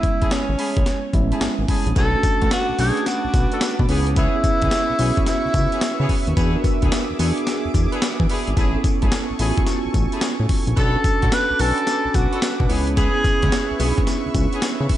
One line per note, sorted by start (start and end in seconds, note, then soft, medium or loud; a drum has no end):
0.00 0.53 G#3 medium
0.00 0.53 B3 medium
0.00 0.53 C#4 medium
0.00 0.34 E4 loud
0.00 0.54 E4 medium
0.00 kick loud
0.00 closed hi-hat medium
0.22 0.26 G#1 medium
0.22 0.35 A3 medium
0.22 0.35 C#4 medium
0.22 0.35 E4 medium
0.22 0.35 G#4 medium
0.22 kick medium
0.22 closed hi-hat medium
0.31 1.14 C#4 medium
0.31 snare loud
0.31 closed hi-hat medium
0.49 0.56 G#1 loud
0.58 0.78 A3 medium
0.58 0.78 C#4 medium
0.58 0.79 E4 medium
0.58 0.79 G#4 medium
0.58 open hi-hat medium
0.77 0.84 A1 medium
0.77 kick loud
0.77 closed hi-hat soft
0.86 snare medium
0.86 closed hi-hat medium
1.13 1.33 A1 loud
1.13 1.70 G#3 medium
1.13 1.70 B3 medium
1.13 1.70 C#4 medium
1.13 1.70 E4 loud
1.13 1.39 E5 medium
1.13 kick medium
1.13 closed hi-hat medium
1.31 1.45 A3 medium
1.31 1.45 C#4 medium
1.31 1.45 E4 medium
1.31 1.45 G#4 medium
1.31 closed hi-hat soft
1.41 1.48 G#1 soft
1.41 1.92 G#5 medium
1.41 snare loud
1.41 closed hi-hat medium
1.59 1.66 G#1 medium
1.68 1.88 A3 medium
1.68 1.89 C#4 medium
1.68 1.89 E4 medium
1.68 1.89 G#4 medium
1.68 kick medium
1.68 open hi-hat medium
1.86 1.93 A#1 medium
1.86 closed hi-hat medium
1.96 2.16 B1 loud
1.96 2.08 A3 medium
1.96 2.16 B3 medium
1.96 2.09 C#4 medium
1.96 2.16 D4 medium
1.96 2.09 D4 medium
1.96 2.16 F#4 medium
1.96 2.09 F#4 medium
1.96 2.16 A4 loud
1.96 2.48 A4 loud
1.96 6.33 B4 medium
1.96 3.87 A5 medium
1.96 3.87 D6 medium
1.96 kick loud
1.96 closed hi-hat medium
1.96 tambourine medium
2.14 2.58 A3 medium
2.14 2.58 C#4 medium
2.14 2.59 D4 medium
2.14 2.59 F#4 medium
2.23 kick loud
2.23 closed hi-hat medium
2.23 tambourine medium
2.41 2.49 A1 medium
2.41 2.55 B3 medium
2.41 2.55 D4 medium
2.41 2.55 F#4 medium
2.41 2.55 A4 medium
2.41 kick medium
2.41 closed hi-hat medium
2.51 2.81 F#4 loud
2.51 snare loud
2.51 closed hi-hat medium
2.51 tambourine loud
2.69 2.73 B1 soft
2.78 2.92 B1 loud
2.78 3.56 A3 medium
2.78 2.99 B3 medium
2.78 3.56 C#4 medium
2.78 2.99 D4 medium
2.78 3.56 D4 medium
2.78 2.99 F#4 medium
2.78 3.56 F#4 medium
2.78 3.07 G#4 loud
2.78 2.99 A4 medium
2.78 open hi-hat medium
2.78 tambourine medium
2.97 closed hi-hat medium
3.06 3.85 F#4 medium
3.06 snare medium
3.06 closed hi-hat medium
3.06 tambourine medium
3.24 3.28 B1 medium
3.34 3.47 B1 loud
3.34 kick loud
3.34 closed hi-hat medium
3.34 tambourine medium
3.52 3.65 B3 medium
3.52 3.65 D4 medium
3.52 3.65 F#4 medium
3.52 3.65 A4 medium
3.52 closed hi-hat medium
3.61 snare loud
3.61 closed hi-hat medium
3.61 tambourine loud
3.79 3.86 B2 loud
3.79 kick medium
3.89 4.28 C#2 loud
3.89 4.24 B3 loud
3.89 4.09 B3 medium
3.89 4.24 C#4 medium
3.89 4.09 C#4 medium
3.89 4.09 E4 medium
3.89 4.24 E4 medium
3.89 4.09 G#4 medium
3.89 4.24 G#4 loud
3.89 8.53 E5 medium
3.89 6.34 C#6 medium
3.89 open hi-hat medium
4.07 closed hi-hat medium
4.16 4.36 B3 medium
4.16 4.36 C#4 medium
4.16 4.37 E4 medium
4.16 5.23 E4 loud
4.16 4.37 G#4 loud
4.16 kick loud
4.16 closed hi-hat medium
4.16 tambourine medium
4.34 4.78 B3 medium
4.34 4.79 C#4 medium
4.34 4.79 E4 medium
4.34 4.79 G#4 medium
4.44 kick medium
4.44 closed hi-hat medium
4.44 tambourine medium
4.62 4.69 C#2 loud
4.62 4.75 B3 medium
4.62 4.75 C#4 medium
4.62 4.75 E4 medium
4.62 4.75 G#4 medium
4.62 kick medium
4.62 closed hi-hat medium
4.71 snare loud
4.71 closed hi-hat medium
4.71 tambourine loud
4.90 4.93 B1 soft
4.99 5.12 B1 medium
4.99 5.76 B3 medium
4.99 5.19 B3 medium
4.99 5.19 C#4 medium
4.99 5.76 C#4 medium
4.99 5.19 E4 medium
4.99 5.76 E4 medium
4.99 5.77 F#4 loud
4.99 5.19 G#4 medium
4.99 open hi-hat medium
4.99 tambourine medium
5.17 kick loud
5.17 closed hi-hat medium
5.26 6.06 E4 loud
5.26 snare medium
5.26 closed hi-hat medium
5.26 tambourine medium
5.45 5.49 C#2 medium
5.54 5.67 C#2 medium
5.54 kick loud
5.54 closed hi-hat medium
5.54 tambourine medium
5.72 5.85 B3 medium
5.72 5.85 C#4 medium
5.72 5.85 E4 medium
5.72 5.86 G#4 medium
5.72 closed hi-hat medium
5.81 snare loud
5.81 closed hi-hat medium
5.81 tambourine loud
6.00 6.07 C#3 loud
6.00 6.13 B3 medium
6.00 6.13 C#4 medium
6.00 6.13 E4 medium
6.00 6.13 G#4 medium
6.09 kick medium
6.09 open hi-hat medium
6.27 6.34 D#2 medium
6.27 closed hi-hat medium
6.37 6.57 E2 loud
6.37 6.57 B3 medium
6.37 6.49 B3 medium
6.37 6.57 D4 medium
6.37 6.49 D4 medium
6.37 6.57 E4 medium
6.37 6.49 F#4 medium
6.37 8.55 G#4 medium
6.37 6.57 G#4 loud
6.37 6.49 G#4 loud
6.37 8.55 D6 medium
6.37 kick loud
6.37 closed hi-hat medium
6.37 tambourine medium
6.54 6.98 B3 medium
6.54 6.99 D4 medium
6.54 6.99 F#4 medium
6.54 6.60 A#4 medium
6.62 7.02 B4 medium
6.62 kick loud
6.62 closed hi-hat medium
6.62 tambourine medium
6.82 6.89 D2 medium
6.82 6.95 B3 medium
6.82 6.95 D4 medium
6.82 6.95 E4 medium
6.82 6.95 G#4 medium
6.82 kick medium
6.82 closed hi-hat medium
6.92 snare loud
6.92 closed hi-hat medium
6.92 tambourine loud
7.10 7.14 E2 medium
7.19 7.32 E2 loud
7.19 7.96 B3 medium
7.19 7.39 B3 medium
7.19 7.96 D4 medium
7.19 7.39 D4 medium
7.19 7.39 E4 medium
7.19 7.97 F#4 medium
7.19 7.39 G#4 medium
7.19 7.97 G#4 loud
7.19 open hi-hat medium
7.19 tambourine medium
7.38 closed hi-hat medium
7.47 snare medium
7.47 closed hi-hat medium
7.47 tambourine medium
7.65 7.69 E2 medium
7.74 7.87 E2 loud
7.74 kick medium
7.74 closed hi-hat medium
7.74 tambourine medium
7.92 8.05 B3 medium
7.92 8.05 D4 medium
7.92 8.05 E4 medium
7.92 8.05 G#4 medium
7.92 closed hi-hat medium
8.02 snare loud
8.02 closed hi-hat medium
8.02 tambourine loud
8.20 8.27 E3 loud
8.20 kick medium
8.29 8.49 B3 medium
8.29 8.49 D4 medium
8.29 8.49 E4 medium
8.29 8.50 G#4 medium
8.29 open hi-hat medium
8.47 8.54 G#1 medium
8.47 closed hi-hat medium
8.57 8.77 A1 loud
8.57 8.77 A3 loud
8.57 8.69 B3 medium
8.57 8.77 C#4 medium
8.57 8.69 C#4 medium
8.57 8.77 E4 medium
8.57 8.69 E4 medium
8.57 8.77 G#4 loud
8.57 8.70 G#4 loud
8.57 10.75 A4 medium
8.57 10.75 G#5 medium
8.57 10.75 C#6 medium
8.57 kick loud
8.57 closed hi-hat medium
8.57 tambourine medium
8.75 9.19 B3 medium
8.75 9.19 C#4 medium
8.75 9.19 E4 medium
8.75 9.19 A4 loud
8.84 kick loud
8.84 closed hi-hat medium
8.84 tambourine medium
9.02 9.09 G#1 medium
9.02 9.15 A3 medium
9.02 9.15 C#4 medium
9.02 9.16 E4 medium
9.02 9.16 G#4 medium
9.02 kick medium
9.02 closed hi-hat medium
9.12 snare loud
9.12 closed hi-hat medium
9.12 tambourine medium
9.30 9.34 A1 medium
9.39 9.52 A1 medium
9.39 9.59 A3 medium
9.39 10.16 B3 medium
9.39 9.59 C#4 medium
9.39 10.17 C#4 medium
9.39 9.59 E4 medium
9.39 10.17 E4 medium
9.39 9.48 F4 medium
9.39 9.59 G#4 medium
9.39 open hi-hat medium
9.39 tambourine medium
9.47 10.20 F#4 medium
9.57 kick loud
9.57 closed hi-hat medium
9.67 snare medium
9.67 closed hi-hat medium
9.67 tambourine medium
9.85 9.89 A1 medium
9.94 10.07 A1 loud
9.94 kick medium
9.94 closed hi-hat medium
9.94 tambourine medium
10.12 10.25 A3 medium
10.12 10.26 C#4 medium
10.12 10.26 E4 medium
10.12 10.26 G#4 medium
10.12 closed hi-hat medium
10.21 snare loud
10.21 closed hi-hat medium
10.21 tambourine loud
10.40 10.47 A2 medium
10.49 kick medium
10.49 open hi-hat medium
10.67 10.74 A#1 medium
10.67 closed hi-hat medium
10.77 10.97 B1 loud
10.77 10.97 B3 medium
10.77 10.89 C#4 medium
10.77 10.89 D4 medium
10.77 10.97 D4 medium
10.77 10.97 F#4 medium
10.77 10.89 F#4 medium
10.77 12.68 A4 medium
10.77 10.97 A4 loud
10.77 10.90 A4 medium
10.77 11.35 A4 loud
10.77 14.97 B4 medium
10.77 12.68 D6 medium
10.77 kick loud
10.77 closed hi-hat medium
10.77 tambourine medium
10.95 11.39 C#4 medium
10.95 11.39 D4 medium
10.95 11.39 F#4 medium
10.95 11.40 A4 medium
11.04 kick loud
11.04 closed hi-hat medium
11.04 tambourine medium
11.22 11.30 A1 medium
11.22 11.35 B3 medium
11.22 11.35 D4 medium
11.22 11.36 F#4 medium
11.22 11.36 A4 medium
11.22 kick medium
11.22 closed hi-hat medium
11.32 11.62 B4 loud
11.32 snare loud
11.32 closed hi-hat medium
11.32 tambourine loud
11.50 11.54 B1 medium
11.59 11.73 B1 medium
11.59 11.79 B3 medium
11.59 12.37 C#4 medium
11.59 11.79 D4 medium
11.59 12.37 D4 medium
11.59 11.79 F#4 medium
11.59 12.37 F#4 medium
11.59 11.80 A4 medium
11.59 12.17 A4 loud
11.59 12.37 G#5 medium
11.59 open hi-hat medium
11.59 tambourine medium
11.78 closed hi-hat medium
11.87 snare medium
11.87 closed hi-hat medium
11.87 tambourine medium
12.05 12.09 B1 medium
12.14 12.28 B1 medium
12.14 12.70 F#4 medium
12.14 kick medium
12.14 closed hi-hat medium
12.14 tambourine medium
12.32 12.46 B3 medium
12.32 12.46 D4 medium
12.32 12.46 F#4 medium
12.32 12.46 A4 medium
12.32 closed hi-hat medium
12.42 snare loud
12.42 closed hi-hat medium
12.42 tambourine loud
12.60 12.67 B2 loud
12.60 kick loud
12.69 13.09 C#2 medium
12.69 12.89 B3 medium
12.69 13.04 B3 medium
12.69 12.89 C#4 medium
12.69 13.05 C#4 medium
12.69 12.90 E4 medium
12.69 13.05 E4 medium
12.69 12.90 G#4 medium
12.69 13.05 G#4 medium
12.69 14.97 E5 medium
12.69 14.97 C#6 medium
12.69 open hi-hat medium
12.87 closed hi-hat medium
12.97 13.17 B3 medium
12.97 13.17 C#4 medium
12.97 13.17 E4 medium
12.97 14.03 G#4 loud
12.97 13.17 G#4 loud
12.97 kick loud
12.97 closed hi-hat medium
12.97 tambourine medium
13.15 13.59 B3 medium
13.15 13.59 C#4 medium
13.15 13.59 E4 medium
13.15 13.60 G#4 medium
13.24 kick loud
13.24 closed hi-hat medium
13.24 tambourine medium
13.42 13.50 C#2 medium
13.42 13.55 B3 medium
13.42 13.56 C#4 medium
13.42 13.56 E4 medium
13.42 13.56 G#4 medium
13.42 kick medium
13.42 closed hi-hat medium
13.52 snare loud
13.52 closed hi-hat medium
13.52 tambourine loud
13.70 13.74 B1 soft
13.79 13.93 B1 medium
13.79 13.99 B3 medium
13.79 14.57 B3 medium
13.79 14.00 C#4 medium
13.79 14.57 C#4 medium
13.79 13.89 D4 medium
13.79 14.00 E4 medium
13.79 14.00 G#4 medium
13.79 14.57 G#4 loud
13.79 open hi-hat medium
13.79 tambourine medium
13.87 14.60 E4 medium
13.98 kick loud
13.98 closed hi-hat medium
14.07 snare medium
14.07 closed hi-hat medium
14.07 tambourine medium
14.26 14.29 C#2 medium
14.35 14.48 C#2 medium
14.35 kick medium
14.35 closed hi-hat medium
14.35 tambourine medium
14.53 14.66 B3 medium
14.53 14.66 C#4 medium
14.53 14.66 E4 medium
14.53 14.66 G#4 medium
14.53 closed hi-hat medium
14.62 snare loud
14.62 closed hi-hat medium
14.62 tambourine loud
14.81 14.87 C#3 loud
14.89 kick medium
14.89 open hi-hat medium